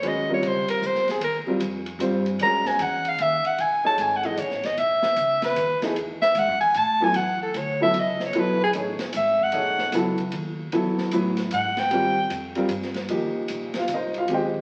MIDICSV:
0, 0, Header, 1, 6, 480
1, 0, Start_track
1, 0, Tempo, 396301
1, 38, Time_signature, 3, 2, 24, 8
1, 17696, End_track
2, 0, Start_track
2, 0, Title_t, "Soprano saxophone"
2, 0, Program_c, 0, 64
2, 89, Note_on_c, 0, 75, 86
2, 375, Note_off_c, 0, 75, 0
2, 411, Note_on_c, 0, 73, 81
2, 572, Note_on_c, 0, 72, 73
2, 590, Note_off_c, 0, 73, 0
2, 839, Note_off_c, 0, 72, 0
2, 846, Note_on_c, 0, 70, 84
2, 1046, Note_on_c, 0, 72, 87
2, 1065, Note_off_c, 0, 70, 0
2, 1333, Note_off_c, 0, 72, 0
2, 1346, Note_on_c, 0, 68, 76
2, 1484, Note_off_c, 0, 68, 0
2, 1505, Note_on_c, 0, 70, 85
2, 1683, Note_off_c, 0, 70, 0
2, 2938, Note_on_c, 0, 82, 87
2, 3235, Note_on_c, 0, 80, 90
2, 3253, Note_off_c, 0, 82, 0
2, 3414, Note_on_c, 0, 78, 80
2, 3433, Note_off_c, 0, 80, 0
2, 3735, Note_on_c, 0, 77, 92
2, 3753, Note_off_c, 0, 78, 0
2, 3895, Note_on_c, 0, 76, 82
2, 3913, Note_off_c, 0, 77, 0
2, 4195, Note_on_c, 0, 78, 87
2, 4213, Note_off_c, 0, 76, 0
2, 4368, Note_on_c, 0, 80, 78
2, 4386, Note_off_c, 0, 78, 0
2, 4670, Note_off_c, 0, 80, 0
2, 4680, Note_on_c, 0, 81, 95
2, 4861, Note_on_c, 0, 80, 82
2, 4879, Note_off_c, 0, 81, 0
2, 5045, Note_on_c, 0, 78, 73
2, 5064, Note_off_c, 0, 80, 0
2, 5155, Note_on_c, 0, 75, 75
2, 5173, Note_off_c, 0, 78, 0
2, 5315, Note_on_c, 0, 73, 77
2, 5333, Note_off_c, 0, 75, 0
2, 5638, Note_on_c, 0, 75, 80
2, 5656, Note_off_c, 0, 73, 0
2, 5801, Note_on_c, 0, 76, 88
2, 5819, Note_off_c, 0, 75, 0
2, 6584, Note_off_c, 0, 76, 0
2, 6592, Note_on_c, 0, 71, 81
2, 7030, Note_off_c, 0, 71, 0
2, 7532, Note_on_c, 0, 76, 92
2, 7730, Note_on_c, 0, 78, 90
2, 7748, Note_off_c, 0, 76, 0
2, 7995, Note_off_c, 0, 78, 0
2, 8002, Note_on_c, 0, 80, 92
2, 8198, Note_on_c, 0, 81, 90
2, 8216, Note_off_c, 0, 80, 0
2, 8518, Note_on_c, 0, 80, 88
2, 8537, Note_off_c, 0, 81, 0
2, 8675, Note_on_c, 0, 78, 82
2, 8693, Note_off_c, 0, 80, 0
2, 8980, Note_off_c, 0, 78, 0
2, 8992, Note_on_c, 0, 69, 66
2, 9174, Note_on_c, 0, 73, 74
2, 9192, Note_off_c, 0, 69, 0
2, 9469, Note_off_c, 0, 73, 0
2, 9477, Note_on_c, 0, 76, 97
2, 9685, Note_on_c, 0, 75, 84
2, 9704, Note_off_c, 0, 76, 0
2, 9964, Note_off_c, 0, 75, 0
2, 10000, Note_on_c, 0, 73, 78
2, 10164, Note_on_c, 0, 71, 77
2, 10182, Note_off_c, 0, 73, 0
2, 10444, Note_off_c, 0, 71, 0
2, 10459, Note_on_c, 0, 68, 86
2, 10546, Note_off_c, 0, 68, 0
2, 11102, Note_on_c, 0, 76, 83
2, 11421, Note_on_c, 0, 78, 96
2, 11439, Note_off_c, 0, 76, 0
2, 12045, Note_off_c, 0, 78, 0
2, 13970, Note_on_c, 0, 78, 86
2, 14280, Note_on_c, 0, 79, 97
2, 14298, Note_off_c, 0, 78, 0
2, 14917, Note_off_c, 0, 79, 0
2, 17696, End_track
3, 0, Start_track
3, 0, Title_t, "Upright piano"
3, 0, Program_c, 1, 0
3, 31, Note_on_c, 1, 56, 58
3, 38, Note_on_c, 1, 61, 50
3, 50, Note_on_c, 1, 66, 49
3, 51, Note_on_c, 1, 71, 63
3, 315, Note_off_c, 1, 56, 0
3, 318, Note_off_c, 1, 61, 0
3, 324, Note_off_c, 1, 66, 0
3, 325, Note_off_c, 1, 71, 0
3, 351, Note_on_c, 1, 55, 58
3, 360, Note_on_c, 1, 60, 51
3, 366, Note_on_c, 1, 65, 51
3, 368, Note_on_c, 1, 70, 61
3, 1376, Note_off_c, 1, 55, 0
3, 1380, Note_off_c, 1, 60, 0
3, 1383, Note_off_c, 1, 65, 0
3, 1384, Note_off_c, 1, 70, 0
3, 1777, Note_on_c, 1, 55, 66
3, 1781, Note_on_c, 1, 60, 61
3, 1787, Note_on_c, 1, 65, 56
3, 1795, Note_on_c, 1, 70, 70
3, 1933, Note_off_c, 1, 55, 0
3, 1935, Note_off_c, 1, 60, 0
3, 1938, Note_off_c, 1, 65, 0
3, 1942, Note_off_c, 1, 70, 0
3, 2419, Note_on_c, 1, 55, 69
3, 2425, Note_on_c, 1, 60, 61
3, 2428, Note_on_c, 1, 65, 62
3, 2434, Note_on_c, 1, 72, 69
3, 2707, Note_off_c, 1, 55, 0
3, 2709, Note_off_c, 1, 60, 0
3, 2711, Note_off_c, 1, 65, 0
3, 2714, Note_off_c, 1, 72, 0
3, 2917, Note_on_c, 1, 56, 67
3, 2925, Note_on_c, 1, 61, 62
3, 2934, Note_on_c, 1, 66, 62
3, 2937, Note_on_c, 1, 70, 80
3, 4251, Note_off_c, 1, 56, 0
3, 4255, Note_off_c, 1, 61, 0
3, 4259, Note_off_c, 1, 66, 0
3, 4261, Note_off_c, 1, 70, 0
3, 4656, Note_on_c, 1, 63, 59
3, 4657, Note_on_c, 1, 57, 61
3, 4661, Note_on_c, 1, 68, 57
3, 4675, Note_on_c, 1, 73, 69
3, 5106, Note_off_c, 1, 63, 0
3, 5107, Note_off_c, 1, 57, 0
3, 5108, Note_off_c, 1, 68, 0
3, 5115, Note_off_c, 1, 73, 0
3, 5139, Note_on_c, 1, 52, 65
3, 5141, Note_on_c, 1, 57, 57
3, 5151, Note_on_c, 1, 63, 58
3, 5155, Note_on_c, 1, 68, 66
3, 5290, Note_off_c, 1, 52, 0
3, 5291, Note_off_c, 1, 57, 0
3, 5296, Note_off_c, 1, 63, 0
3, 5298, Note_off_c, 1, 68, 0
3, 7055, Note_on_c, 1, 52, 72
3, 7056, Note_on_c, 1, 57, 65
3, 7066, Note_on_c, 1, 63, 64
3, 7071, Note_on_c, 1, 68, 78
3, 7207, Note_off_c, 1, 52, 0
3, 7207, Note_off_c, 1, 57, 0
3, 7212, Note_off_c, 1, 63, 0
3, 7215, Note_off_c, 1, 68, 0
3, 8483, Note_on_c, 1, 54, 62
3, 8489, Note_on_c, 1, 59, 59
3, 8500, Note_on_c, 1, 64, 58
3, 8503, Note_on_c, 1, 69, 70
3, 8639, Note_off_c, 1, 54, 0
3, 8642, Note_off_c, 1, 59, 0
3, 8648, Note_off_c, 1, 64, 0
3, 8650, Note_off_c, 1, 69, 0
3, 9452, Note_on_c, 1, 54, 63
3, 9463, Note_on_c, 1, 59, 56
3, 9466, Note_on_c, 1, 64, 58
3, 9473, Note_on_c, 1, 69, 69
3, 9603, Note_off_c, 1, 54, 0
3, 9609, Note_off_c, 1, 59, 0
3, 9610, Note_off_c, 1, 64, 0
3, 9614, Note_off_c, 1, 69, 0
3, 10102, Note_on_c, 1, 54, 62
3, 10113, Note_on_c, 1, 59, 56
3, 10116, Note_on_c, 1, 64, 52
3, 10121, Note_on_c, 1, 69, 64
3, 10382, Note_off_c, 1, 54, 0
3, 10387, Note_off_c, 1, 59, 0
3, 10388, Note_off_c, 1, 64, 0
3, 10391, Note_off_c, 1, 69, 0
3, 10590, Note_on_c, 1, 57, 57
3, 10594, Note_on_c, 1, 63, 54
3, 10603, Note_on_c, 1, 73, 66
3, 10606, Note_on_c, 1, 68, 57
3, 10865, Note_off_c, 1, 57, 0
3, 10867, Note_off_c, 1, 63, 0
3, 10872, Note_off_c, 1, 73, 0
3, 10873, Note_off_c, 1, 68, 0
3, 11537, Note_on_c, 1, 57, 65
3, 11547, Note_on_c, 1, 63, 57
3, 11554, Note_on_c, 1, 68, 55
3, 11555, Note_on_c, 1, 73, 71
3, 12002, Note_off_c, 1, 57, 0
3, 12007, Note_off_c, 1, 63, 0
3, 12010, Note_off_c, 1, 68, 0
3, 12011, Note_off_c, 1, 73, 0
3, 12029, Note_on_c, 1, 54, 67
3, 12043, Note_on_c, 1, 59, 63
3, 12048, Note_on_c, 1, 64, 67
3, 12054, Note_on_c, 1, 69, 80
3, 12305, Note_off_c, 1, 54, 0
3, 12312, Note_off_c, 1, 59, 0
3, 12315, Note_off_c, 1, 64, 0
3, 12318, Note_off_c, 1, 69, 0
3, 12992, Note_on_c, 1, 54, 64
3, 12994, Note_on_c, 1, 59, 58
3, 12998, Note_on_c, 1, 64, 63
3, 13009, Note_on_c, 1, 69, 73
3, 13450, Note_off_c, 1, 54, 0
3, 13451, Note_off_c, 1, 59, 0
3, 13453, Note_off_c, 1, 64, 0
3, 13459, Note_off_c, 1, 69, 0
3, 13468, Note_on_c, 1, 54, 65
3, 13474, Note_on_c, 1, 59, 59
3, 13476, Note_on_c, 1, 64, 60
3, 13486, Note_on_c, 1, 71, 70
3, 13746, Note_off_c, 1, 54, 0
3, 13749, Note_off_c, 1, 59, 0
3, 13750, Note_off_c, 1, 64, 0
3, 13755, Note_off_c, 1, 71, 0
3, 14422, Note_on_c, 1, 55, 65
3, 14426, Note_on_c, 1, 60, 63
3, 14435, Note_on_c, 1, 65, 58
3, 14442, Note_on_c, 1, 70, 69
3, 14704, Note_off_c, 1, 55, 0
3, 14706, Note_off_c, 1, 60, 0
3, 14711, Note_off_c, 1, 65, 0
3, 14714, Note_off_c, 1, 70, 0
3, 15208, Note_on_c, 1, 55, 76
3, 15214, Note_on_c, 1, 60, 68
3, 15220, Note_on_c, 1, 65, 72
3, 15231, Note_on_c, 1, 70, 81
3, 15364, Note_off_c, 1, 55, 0
3, 15367, Note_off_c, 1, 60, 0
3, 15370, Note_off_c, 1, 65, 0
3, 15376, Note_off_c, 1, 70, 0
3, 15858, Note_on_c, 1, 53, 60
3, 15868, Note_on_c, 1, 63, 56
3, 15870, Note_on_c, 1, 58, 53
3, 15878, Note_on_c, 1, 67, 63
3, 16686, Note_on_c, 1, 77, 77
3, 16692, Note_on_c, 1, 65, 61
3, 16838, Note_off_c, 1, 77, 0
3, 16841, Note_off_c, 1, 65, 0
3, 16867, Note_off_c, 1, 63, 0
3, 16882, Note_on_c, 1, 75, 68
3, 16885, Note_on_c, 1, 63, 55
3, 16888, Note_on_c, 1, 70, 56
3, 16895, Note_on_c, 1, 72, 57
3, 17160, Note_off_c, 1, 75, 0
3, 17162, Note_off_c, 1, 63, 0
3, 17163, Note_off_c, 1, 70, 0
3, 17167, Note_off_c, 1, 72, 0
3, 17174, Note_on_c, 1, 77, 87
3, 17184, Note_on_c, 1, 65, 67
3, 17206, Note_off_c, 1, 53, 0
3, 17212, Note_off_c, 1, 58, 0
3, 17216, Note_off_c, 1, 67, 0
3, 17303, Note_off_c, 1, 65, 0
3, 17314, Note_on_c, 1, 60, 55
3, 17314, Note_on_c, 1, 67, 60
3, 17321, Note_on_c, 1, 65, 55
3, 17323, Note_off_c, 1, 77, 0
3, 17331, Note_on_c, 1, 56, 69
3, 17348, Note_off_c, 1, 67, 0
3, 17366, Note_on_c, 1, 67, 61
3, 17367, Note_on_c, 1, 72, 58
3, 17367, Note_on_c, 1, 79, 74
3, 17370, Note_on_c, 1, 75, 57
3, 17696, Note_off_c, 1, 56, 0
3, 17696, Note_off_c, 1, 60, 0
3, 17696, Note_off_c, 1, 65, 0
3, 17696, Note_off_c, 1, 67, 0
3, 17696, Note_off_c, 1, 72, 0
3, 17696, Note_off_c, 1, 75, 0
3, 17696, Note_off_c, 1, 79, 0
3, 17696, End_track
4, 0, Start_track
4, 0, Title_t, "Upright bass"
4, 0, Program_c, 2, 32
4, 26, Note_on_c, 2, 39, 78
4, 497, Note_off_c, 2, 39, 0
4, 510, Note_on_c, 2, 37, 82
4, 803, Note_off_c, 2, 37, 0
4, 992, Note_on_c, 2, 36, 88
4, 1453, Note_off_c, 2, 36, 0
4, 1460, Note_on_c, 2, 39, 76
4, 1757, Note_off_c, 2, 39, 0
4, 1930, Note_on_c, 2, 41, 88
4, 2401, Note_off_c, 2, 41, 0
4, 2408, Note_on_c, 2, 43, 93
4, 2885, Note_off_c, 2, 43, 0
4, 2891, Note_on_c, 2, 42, 78
4, 3366, Note_off_c, 2, 42, 0
4, 3389, Note_on_c, 2, 40, 88
4, 3855, Note_off_c, 2, 40, 0
4, 3874, Note_on_c, 2, 39, 90
4, 4161, Note_off_c, 2, 39, 0
4, 4343, Note_on_c, 2, 35, 67
4, 4807, Note_off_c, 2, 35, 0
4, 4814, Note_on_c, 2, 32, 78
4, 5285, Note_off_c, 2, 32, 0
4, 5298, Note_on_c, 2, 33, 87
4, 5767, Note_off_c, 2, 33, 0
4, 5781, Note_on_c, 2, 35, 69
4, 6248, Note_off_c, 2, 35, 0
4, 6253, Note_on_c, 2, 37, 85
4, 6724, Note_off_c, 2, 37, 0
4, 6733, Note_on_c, 2, 39, 90
4, 7028, Note_off_c, 2, 39, 0
4, 7223, Note_on_c, 2, 40, 76
4, 7683, Note_off_c, 2, 40, 0
4, 7691, Note_on_c, 2, 44, 89
4, 7849, Note_off_c, 2, 44, 0
4, 7849, Note_on_c, 2, 42, 61
4, 8002, Note_off_c, 2, 42, 0
4, 8009, Note_on_c, 2, 40, 58
4, 8164, Note_off_c, 2, 40, 0
4, 8182, Note_on_c, 2, 45, 87
4, 8647, Note_off_c, 2, 45, 0
4, 8653, Note_on_c, 2, 40, 74
4, 9122, Note_off_c, 2, 40, 0
4, 9133, Note_on_c, 2, 38, 85
4, 9602, Note_off_c, 2, 38, 0
4, 9623, Note_on_c, 2, 37, 84
4, 10087, Note_off_c, 2, 37, 0
4, 10104, Note_on_c, 2, 35, 75
4, 10567, Note_off_c, 2, 35, 0
4, 10582, Note_on_c, 2, 33, 82
4, 10871, Note_off_c, 2, 33, 0
4, 11069, Note_on_c, 2, 32, 86
4, 11530, Note_off_c, 2, 32, 0
4, 11549, Note_on_c, 2, 35, 80
4, 12010, Note_off_c, 2, 35, 0
4, 12038, Note_on_c, 2, 37, 89
4, 12495, Note_off_c, 2, 37, 0
4, 12516, Note_on_c, 2, 39, 93
4, 12975, Note_off_c, 2, 39, 0
4, 12992, Note_on_c, 2, 40, 78
4, 13277, Note_off_c, 2, 40, 0
4, 13471, Note_on_c, 2, 45, 91
4, 13933, Note_off_c, 2, 45, 0
4, 13951, Note_on_c, 2, 44, 94
4, 14413, Note_off_c, 2, 44, 0
4, 14421, Note_on_c, 2, 39, 77
4, 14889, Note_off_c, 2, 39, 0
4, 14901, Note_on_c, 2, 41, 94
4, 15364, Note_off_c, 2, 41, 0
4, 15371, Note_on_c, 2, 43, 92
4, 15845, Note_off_c, 2, 43, 0
4, 15859, Note_on_c, 2, 39, 70
4, 16154, Note_off_c, 2, 39, 0
4, 16351, Note_on_c, 2, 34, 82
4, 16813, Note_off_c, 2, 34, 0
4, 16821, Note_on_c, 2, 36, 86
4, 17292, Note_off_c, 2, 36, 0
4, 17306, Note_on_c, 2, 39, 78
4, 17696, Note_off_c, 2, 39, 0
4, 17696, End_track
5, 0, Start_track
5, 0, Title_t, "Muted upright bass strokes"
5, 833, Note_on_c, 9, 29, 36
5, 954, Note_off_c, 9, 29, 0
5, 1769, Note_on_c, 9, 29, 40
5, 1890, Note_off_c, 9, 29, 0
5, 4182, Note_on_c, 9, 29, 39
5, 4303, Note_off_c, 9, 29, 0
5, 7040, Note_on_c, 9, 29, 40
5, 7161, Note_off_c, 9, 29, 0
5, 10905, Note_on_c, 9, 29, 37
5, 11026, Note_off_c, 9, 29, 0
5, 13310, Note_on_c, 9, 29, 40
5, 13431, Note_off_c, 9, 29, 0
5, 16178, Note_on_c, 9, 29, 35
5, 16300, Note_off_c, 9, 29, 0
5, 17696, End_track
6, 0, Start_track
6, 0, Title_t, "Drums"
6, 35, Note_on_c, 9, 51, 58
6, 156, Note_off_c, 9, 51, 0
6, 517, Note_on_c, 9, 51, 57
6, 638, Note_off_c, 9, 51, 0
6, 827, Note_on_c, 9, 51, 67
6, 949, Note_off_c, 9, 51, 0
6, 995, Note_on_c, 9, 44, 54
6, 1116, Note_off_c, 9, 44, 0
6, 1154, Note_on_c, 9, 38, 28
6, 1275, Note_off_c, 9, 38, 0
6, 1305, Note_on_c, 9, 51, 42
6, 1316, Note_on_c, 9, 38, 41
6, 1426, Note_off_c, 9, 51, 0
6, 1437, Note_off_c, 9, 38, 0
6, 1467, Note_on_c, 9, 51, 71
6, 1589, Note_off_c, 9, 51, 0
6, 1941, Note_on_c, 9, 44, 47
6, 1941, Note_on_c, 9, 51, 65
6, 2063, Note_off_c, 9, 44, 0
6, 2063, Note_off_c, 9, 51, 0
6, 2253, Note_on_c, 9, 51, 44
6, 2375, Note_off_c, 9, 51, 0
6, 2424, Note_on_c, 9, 44, 55
6, 2424, Note_on_c, 9, 51, 67
6, 2545, Note_off_c, 9, 44, 0
6, 2545, Note_off_c, 9, 51, 0
6, 2736, Note_on_c, 9, 51, 42
6, 2857, Note_off_c, 9, 51, 0
6, 2898, Note_on_c, 9, 51, 63
6, 3020, Note_off_c, 9, 51, 0
6, 3213, Note_on_c, 9, 38, 51
6, 3334, Note_off_c, 9, 38, 0
6, 3379, Note_on_c, 9, 44, 50
6, 3379, Note_on_c, 9, 51, 73
6, 3500, Note_off_c, 9, 44, 0
6, 3500, Note_off_c, 9, 51, 0
6, 3691, Note_on_c, 9, 51, 43
6, 3812, Note_off_c, 9, 51, 0
6, 3856, Note_on_c, 9, 51, 60
6, 3977, Note_off_c, 9, 51, 0
6, 4173, Note_on_c, 9, 51, 44
6, 4294, Note_off_c, 9, 51, 0
6, 4339, Note_on_c, 9, 51, 56
6, 4460, Note_off_c, 9, 51, 0
6, 4817, Note_on_c, 9, 44, 53
6, 4817, Note_on_c, 9, 51, 62
6, 4938, Note_off_c, 9, 44, 0
6, 4938, Note_off_c, 9, 51, 0
6, 5127, Note_on_c, 9, 51, 41
6, 5248, Note_off_c, 9, 51, 0
6, 5297, Note_on_c, 9, 44, 50
6, 5297, Note_on_c, 9, 51, 62
6, 5418, Note_off_c, 9, 44, 0
6, 5418, Note_off_c, 9, 51, 0
6, 5459, Note_on_c, 9, 38, 27
6, 5580, Note_off_c, 9, 38, 0
6, 5613, Note_on_c, 9, 51, 42
6, 5621, Note_on_c, 9, 38, 37
6, 5734, Note_off_c, 9, 51, 0
6, 5742, Note_off_c, 9, 38, 0
6, 5783, Note_on_c, 9, 51, 56
6, 5904, Note_off_c, 9, 51, 0
6, 6086, Note_on_c, 9, 38, 56
6, 6207, Note_off_c, 9, 38, 0
6, 6254, Note_on_c, 9, 44, 61
6, 6254, Note_on_c, 9, 51, 58
6, 6375, Note_off_c, 9, 44, 0
6, 6375, Note_off_c, 9, 51, 0
6, 6563, Note_on_c, 9, 51, 44
6, 6566, Note_on_c, 9, 38, 56
6, 6684, Note_off_c, 9, 51, 0
6, 6687, Note_off_c, 9, 38, 0
6, 6736, Note_on_c, 9, 44, 57
6, 6736, Note_on_c, 9, 51, 64
6, 6857, Note_off_c, 9, 44, 0
6, 6857, Note_off_c, 9, 51, 0
6, 7049, Note_on_c, 9, 51, 42
6, 7052, Note_on_c, 9, 38, 46
6, 7170, Note_off_c, 9, 51, 0
6, 7173, Note_off_c, 9, 38, 0
6, 7219, Note_on_c, 9, 51, 57
6, 7340, Note_off_c, 9, 51, 0
6, 7530, Note_on_c, 9, 38, 47
6, 7651, Note_off_c, 9, 38, 0
6, 7688, Note_on_c, 9, 44, 49
6, 7688, Note_on_c, 9, 51, 65
6, 7809, Note_off_c, 9, 44, 0
6, 7809, Note_off_c, 9, 51, 0
6, 8001, Note_on_c, 9, 51, 45
6, 8122, Note_off_c, 9, 51, 0
6, 8168, Note_on_c, 9, 44, 50
6, 8168, Note_on_c, 9, 51, 64
6, 8289, Note_off_c, 9, 44, 0
6, 8289, Note_off_c, 9, 51, 0
6, 8647, Note_on_c, 9, 51, 64
6, 8768, Note_off_c, 9, 51, 0
6, 9134, Note_on_c, 9, 44, 53
6, 9134, Note_on_c, 9, 51, 65
6, 9255, Note_off_c, 9, 44, 0
6, 9255, Note_off_c, 9, 51, 0
6, 9614, Note_on_c, 9, 51, 60
6, 9735, Note_off_c, 9, 51, 0
6, 9928, Note_on_c, 9, 38, 44
6, 10049, Note_off_c, 9, 38, 0
6, 10089, Note_on_c, 9, 51, 61
6, 10210, Note_off_c, 9, 51, 0
6, 10575, Note_on_c, 9, 44, 49
6, 10575, Note_on_c, 9, 51, 69
6, 10696, Note_off_c, 9, 44, 0
6, 10696, Note_off_c, 9, 51, 0
6, 10887, Note_on_c, 9, 51, 44
6, 10889, Note_on_c, 9, 38, 57
6, 11008, Note_off_c, 9, 51, 0
6, 11010, Note_off_c, 9, 38, 0
6, 11053, Note_on_c, 9, 44, 62
6, 11053, Note_on_c, 9, 51, 69
6, 11175, Note_off_c, 9, 44, 0
6, 11175, Note_off_c, 9, 51, 0
6, 11371, Note_on_c, 9, 36, 49
6, 11492, Note_off_c, 9, 36, 0
6, 11527, Note_on_c, 9, 51, 67
6, 11648, Note_off_c, 9, 51, 0
6, 11850, Note_on_c, 9, 38, 38
6, 11971, Note_off_c, 9, 38, 0
6, 12016, Note_on_c, 9, 44, 65
6, 12016, Note_on_c, 9, 51, 66
6, 12018, Note_on_c, 9, 38, 37
6, 12137, Note_off_c, 9, 44, 0
6, 12137, Note_off_c, 9, 51, 0
6, 12140, Note_off_c, 9, 38, 0
6, 12327, Note_on_c, 9, 51, 44
6, 12333, Note_on_c, 9, 36, 54
6, 12448, Note_off_c, 9, 51, 0
6, 12455, Note_off_c, 9, 36, 0
6, 12494, Note_on_c, 9, 51, 61
6, 12616, Note_off_c, 9, 51, 0
6, 12985, Note_on_c, 9, 51, 61
6, 13106, Note_off_c, 9, 51, 0
6, 13298, Note_on_c, 9, 38, 43
6, 13419, Note_off_c, 9, 38, 0
6, 13460, Note_on_c, 9, 44, 60
6, 13460, Note_on_c, 9, 51, 67
6, 13581, Note_off_c, 9, 44, 0
6, 13581, Note_off_c, 9, 51, 0
6, 13769, Note_on_c, 9, 51, 44
6, 13771, Note_on_c, 9, 38, 38
6, 13890, Note_off_c, 9, 51, 0
6, 13892, Note_off_c, 9, 38, 0
6, 13938, Note_on_c, 9, 44, 56
6, 13938, Note_on_c, 9, 51, 69
6, 14059, Note_off_c, 9, 44, 0
6, 14059, Note_off_c, 9, 51, 0
6, 14252, Note_on_c, 9, 51, 46
6, 14254, Note_on_c, 9, 38, 58
6, 14373, Note_off_c, 9, 51, 0
6, 14375, Note_off_c, 9, 38, 0
6, 14422, Note_on_c, 9, 51, 63
6, 14543, Note_off_c, 9, 51, 0
6, 14899, Note_on_c, 9, 44, 54
6, 14899, Note_on_c, 9, 51, 71
6, 15021, Note_off_c, 9, 44, 0
6, 15021, Note_off_c, 9, 51, 0
6, 15202, Note_on_c, 9, 51, 47
6, 15323, Note_off_c, 9, 51, 0
6, 15365, Note_on_c, 9, 44, 60
6, 15365, Note_on_c, 9, 51, 68
6, 15486, Note_off_c, 9, 44, 0
6, 15486, Note_off_c, 9, 51, 0
6, 15532, Note_on_c, 9, 38, 29
6, 15653, Note_off_c, 9, 38, 0
6, 15675, Note_on_c, 9, 51, 44
6, 15687, Note_on_c, 9, 38, 46
6, 15796, Note_off_c, 9, 51, 0
6, 15808, Note_off_c, 9, 38, 0
6, 15848, Note_on_c, 9, 51, 61
6, 15969, Note_off_c, 9, 51, 0
6, 16329, Note_on_c, 9, 44, 53
6, 16329, Note_on_c, 9, 51, 65
6, 16450, Note_off_c, 9, 44, 0
6, 16450, Note_off_c, 9, 51, 0
6, 16638, Note_on_c, 9, 51, 43
6, 16641, Note_on_c, 9, 38, 48
6, 16759, Note_off_c, 9, 51, 0
6, 16762, Note_off_c, 9, 38, 0
6, 16808, Note_on_c, 9, 44, 54
6, 16808, Note_on_c, 9, 51, 66
6, 16929, Note_off_c, 9, 44, 0
6, 16929, Note_off_c, 9, 51, 0
6, 17126, Note_on_c, 9, 51, 44
6, 17247, Note_off_c, 9, 51, 0
6, 17293, Note_on_c, 9, 51, 57
6, 17414, Note_off_c, 9, 51, 0
6, 17613, Note_on_c, 9, 36, 50
6, 17696, Note_off_c, 9, 36, 0
6, 17696, End_track
0, 0, End_of_file